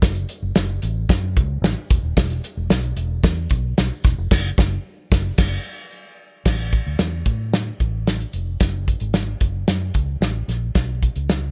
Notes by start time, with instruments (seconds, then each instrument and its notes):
0.02 fingered electric bass F#1, kick, snare, closed hi-hat
0.15 closed hi-hat
0.29 closed hi-hat
0.42 fingered electric bass F#1
0.55 fingered electric bass F#1, snare, closed hi-hat
0.82 fingered electric bass A1, closed hi-hat
1.09 fingered electric bass F#2, kick, snare, closed hi-hat
1.37 fingered electric bass C#2, kick, closed hi-hat
1.62 fingered electric bass A1, snare, closed hi-hat
1.90 fingered electric bass E1, kick, closed hi-hat
2.03 fingered electric bass D#1
2.17 fingered electric bass E1, kick, snare, closed hi-hat
2.30 closed hi-hat
2.44 closed hi-hat
2.57 fingered electric bass E1
2.70 fingered electric bass B1, snare, closed hi-hat
2.83 closed hi-hat
2.96 fingered electric bass E1, closed hi-hat
3.24 fingered electric bass E2, kick, snare, closed hi-hat
3.50 fingered electric bass B1, kick, closed hi-hat
3.78 fingered electric bass B1, snare, closed hi-hat
4.04 fingered electric bass E1, kick, snare, closed hi-hat
4.18 fingered electric bass F1
4.31 fingered electric bass F#1, kick, snare, crash
4.58 fingered electric bass F#1, kick, snare
5.12 fingered electric bass F#1, kick, snare
5.38 fingered electric bass F#1, kick, snare, crash
6.45 fingered electric bass A1, kick, snare, crash
6.73 kick, closed hi-hat
6.87 fingered electric bass D2
6.99 fingered electric bass E2, snare, closed hi-hat
7.26 fingered electric bass A2, kick, closed hi-hat
7.54 snare, closed hi-hat
7.80 fingered electric bass A1, kick, closed hi-hat
8.07 snare, closed hi-hat
8.20 closed hi-hat
8.33 fingered electric bass F1, closed hi-hat
8.60 fingered electric bass F#1, kick, snare, closed hi-hat
8.88 kick, closed hi-hat
9.00 fingered electric bass G#1, closed hi-hat
9.14 snare, closed hi-hat
9.40 fingered electric bass F#1, kick, closed hi-hat
9.68 fingered electric bass F#2, snare, closed hi-hat
9.94 fingered electric bass C#2, kick, closed hi-hat
10.21 fingered electric bass A1, snare, closed hi-hat
10.48 fingered electric bass A#1, snare, closed hi-hat
10.75 fingered electric bass B1, kick, snare, closed hi-hat
11.03 kick, closed hi-hat
11.16 fingered electric bass C#2, closed hi-hat
11.29 snare, closed hi-hat